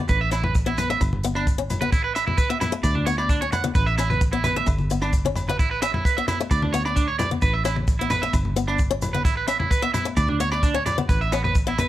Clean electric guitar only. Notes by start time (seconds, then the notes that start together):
0.09 B4
0.21 E5
0.32 E4
0.44 B4
0.67 E4
0.78 B4
0.90 E5
1.35 D4
1.81 B4
1.92 E4
2.04 B4
2.15 E5
2.27 E4
2.37 B4
2.50 E5
2.60 E4
2.83 D5
2.95 D4
3.06 C#5
3.18 D5
3.30 D4
3.41 C#5
3.52 F#5
3.75 B4
3.86 E5
3.98 E4
4.10 B4
4.32 E4
4.44 B4
4.56 E5
5.02 D4
5.49 B4
5.59 E4
5.71 B4
5.82 E5
5.94 E4
6.05 B4
6.17 E5
6.28 E4
6.51 D5
6.63 D4
6.73 C#5
6.85 D5
6.96 D4
7.08 C#5
7.19 D5
7.42 B4
7.54 E5
7.65 E4
7.76 muted clean electric guitar stroke
7.99 E4
8.10 B4
8.22 E5
8.67 D4
9.13 B4
9.25 E4
9.37 B4
9.48 E5
9.60 E4
9.70 B4
9.83 E5
9.94 E4
10.17 D5
10.29 D4
10.40 C#5
10.52 D5
10.63 D4
10.75 C#5
10.86 D5
11.09 B4
11.21 E5
11.32 B3
11.44 B4
11.68 E4
11.79 B4